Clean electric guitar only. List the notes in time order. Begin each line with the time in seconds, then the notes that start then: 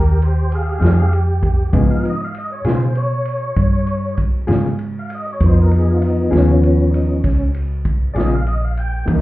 0.79 F3 C4 D#4 G#4
1.72 C#3 B3 F4 G#4
2.65 C#3 B3 F4 G#4
4.47 C#3 B3 F4 G#4
6.31 C#3 B3 F4 G#4
8.15 C#3 B3 F4 G#4
9.06 C3 E3 A#3 D#4